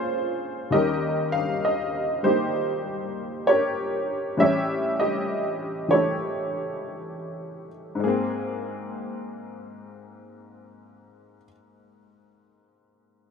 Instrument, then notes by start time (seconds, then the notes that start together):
honky-tonk piano
Already playing: A#2 F3 G#3 A#3 C#4 F4 G#4 C5 C#5
0.70 D#2 D#3 G3 G4 A#4 D#5
0.76 C#4
1.32 F5
1.65 D#5
2.23 G3 A#3 D#4 G4 C5
3.47 G4 A#4 C#5
4.37 A2 E3 G3 C#4 E5
4.42 G4 C#5
5.00 G4 D#5
5.88 E3 A3 C#5
5.93 E4 G4
7.95 G#2
8.00 G#3 A#3 G#4
8.08 C4